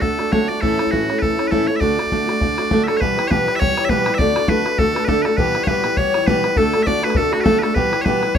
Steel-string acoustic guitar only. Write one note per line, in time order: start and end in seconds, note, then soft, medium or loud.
0.01 0.18 D3 soft
0.01 0.19 A3 medium
0.01 0.19 D4 medium
0.01 0.17 F#4 medium
0.18 0.31 A3 soft
0.18 0.32 D4 soft
0.18 0.32 F#4 soft
0.32 0.49 D3 medium
0.32 0.49 A3 medium
0.32 0.49 D4 medium
0.32 0.48 F#4 medium
0.49 0.61 A3 soft
0.49 0.62 D4 soft
0.49 0.62 F#4 soft
0.61 0.79 A2 medium
0.61 0.79 E3 medium
0.61 0.79 A3 medium
0.61 0.79 C#4 medium
0.61 0.78 E4 medium
0.79 0.91 A3 soft
0.79 0.91 C#4 soft
0.79 0.92 E4 soft
0.91 1.08 A2 medium
0.91 1.09 E3 medium
0.91 1.09 A3 medium
0.91 1.08 C#4 medium
0.91 1.07 E4 medium
1.09 1.21 A3 soft
1.09 1.21 C#4 soft
1.09 1.22 E4 soft
1.22 1.39 E3 medium
1.22 1.38 A3 medium
1.22 1.37 C#4 medium
1.22 1.36 E4 soft
1.37 1.51 A3 soft
1.37 1.51 C#4 soft
1.37 1.51 E4 medium
1.51 1.68 A2 medium
1.51 1.68 E3 medium
1.51 1.68 A3 medium
1.51 1.68 C#4 medium
1.51 1.67 E4 medium
1.68 1.80 A3 soft
1.68 1.82 C#4 soft
1.68 1.81 E4 soft
1.80 1.98 D3 medium
1.80 1.98 A3 medium
1.80 1.98 D4 medium
1.80 1.97 F#4 medium
1.98 2.11 A3 soft
1.98 2.11 D4 soft
1.98 2.11 F#4 soft
2.11 2.28 D3 medium
2.11 2.29 A3 medium
2.11 2.28 D4 medium
2.11 2.26 F#4 medium
2.28 2.41 A3 soft
2.28 2.41 D4 soft
2.28 2.41 F#4 medium
2.41 2.58 D3 medium
2.41 2.58 A3 medium
2.41 2.58 D4 medium
2.41 2.57 F#4 medium
2.58 2.71 A3 soft
2.58 2.71 D4 medium
2.58 2.71 F#4 medium
2.71 2.88 D3 medium
2.71 2.88 A3 medium
2.71 2.88 D4 medium
2.71 2.87 F#4 medium
2.88 3.01 A3 soft
2.88 3.02 D4 soft
2.88 3.01 F#4 soft
3.01 3.18 E2 medium
3.01 3.18 B2 medium
3.01 3.18 E3 medium
3.01 3.18 G3 medium
3.01 3.17 B3 medium
3.01 3.16 G4 medium
3.17 3.29 E3 soft
3.17 3.30 G3 soft
3.17 3.30 B3 soft
3.17 3.30 G4 soft
3.31 3.47 E2 medium
3.31 3.47 B2 medium
3.31 3.47 E3 medium
3.31 3.48 G3 medium
3.31 3.47 B3 medium
3.31 3.46 G4 medium
3.47 3.59 E3 soft
3.47 3.60 G3 soft
3.47 3.60 B3 soft
3.47 3.60 G4 soft
3.61 3.77 E3 soft
3.61 3.77 G3 medium
3.61 3.77 B3 medium
3.61 3.76 G4 medium
3.78 3.90 E3 soft
3.78 3.90 G3 soft
3.78 3.90 B3 soft
3.78 3.90 G4 soft
3.90 4.06 E2 medium
3.90 4.07 B2 medium
3.90 4.07 E3 medium
3.90 4.07 G3 medium
3.90 4.06 B3 medium
3.90 4.06 G4 medium
4.07 4.20 E3 soft
4.07 4.20 G3 soft
4.07 4.20 B3 soft
4.07 4.20 G4 soft
4.20 4.37 D3 medium
4.20 4.37 A3 medium
4.20 4.36 D4 medium
4.20 4.35 F#4 medium
4.36 4.47 A3 soft
4.36 4.48 D4 soft
4.36 4.49 F#4 medium
4.48 4.65 D3 medium
4.48 4.66 A3 medium
4.48 4.66 D4 medium
4.48 4.64 F#4 medium
4.65 4.78 A3 soft
4.65 4.79 D4 soft
4.65 4.79 F#4 soft
4.79 4.96 D3 medium
4.79 4.96 A3 medium
4.79 4.95 D4 medium
4.79 4.94 F#4 medium
4.95 5.07 A3 soft
4.95 5.07 D4 soft
4.95 5.08 F#4 soft
5.08 5.25 D3 medium
5.08 5.25 A3 medium
5.08 5.25 D4 medium
5.08 5.24 F#4 medium
5.25 5.38 A3 soft
5.25 5.38 D4 soft
5.25 5.38 F#4 soft
5.37 5.55 E2 medium
5.37 5.55 B2 medium
5.37 5.55 E3 medium
5.37 5.55 G3 medium
5.37 5.55 B3 medium
5.37 5.55 G4 medium
5.56 5.66 E3 soft
5.56 5.67 G3 soft
5.56 5.68 B3 soft
5.56 5.68 G4 soft
5.67 5.84 E2 medium
5.67 5.85 B2 medium
5.67 5.84 E3 medium
5.67 5.85 G3 medium
5.67 5.85 B3 medium
5.67 5.84 G4 medium
5.85 5.96 E3 soft
5.85 5.97 G3 soft
5.85 5.98 B3 medium
5.85 5.98 G4 medium
5.98 6.14 E3 medium
5.98 6.15 G3 medium
5.98 6.15 B3 medium
5.98 6.13 G4 medium
6.15 6.28 E3 soft
6.15 6.28 G3 soft
6.15 6.28 B3 soft
6.15 6.27 G4 medium
6.28 6.44 E2 medium
6.28 6.45 B2 medium
6.28 6.45 E3 medium
6.28 6.45 G3 medium
6.28 6.44 B3 medium
6.28 6.43 G4 medium
6.45 6.56 E3 soft
6.45 6.57 G3 soft
6.45 6.57 B3 soft
6.45 6.57 G4 soft
6.57 6.74 D3 medium
6.57 6.74 A3 medium
6.57 6.74 D4 medium
6.57 6.74 F#4 medium
6.75 6.86 A3 soft
6.75 6.86 D4 soft
6.75 6.87 F#4 soft
6.86 7.03 D3 medium
6.86 7.03 A3 medium
6.86 7.03 D4 medium
6.86 7.03 F#4 medium
7.04 7.16 A3 soft
7.04 7.17 D4 soft
7.04 7.16 F#4 medium
7.16 7.33 D3 soft
7.16 7.33 A3 medium
7.16 7.31 D4 medium
7.16 7.31 F#4 medium
7.32 7.45 A3 soft
7.32 7.45 D4 soft
7.32 7.45 F#4 medium
7.45 7.62 D3 medium
7.45 7.63 A3 medium
7.45 7.62 D4 medium
7.45 7.61 F#4 medium
7.62 7.75 A3 soft
7.62 7.76 D4 soft
7.62 7.75 F#4 soft
7.75 7.92 E2 medium
7.75 7.92 B2 medium
7.75 7.92 E3 medium
7.75 7.92 G3 medium
7.75 7.92 B3 medium
7.75 7.91 G4 medium
7.92 8.06 E3 soft
7.92 8.06 G3 soft
7.92 8.05 B3 soft
7.92 8.05 G4 soft
8.06 8.22 E2 medium
8.06 8.23 B2 medium
8.06 8.23 E3 medium
8.06 8.23 G3 medium
8.06 8.23 B3 medium
8.06 8.22 G4 medium
8.24 8.35 E3 soft
8.24 8.35 G3 soft
8.24 8.36 B3 soft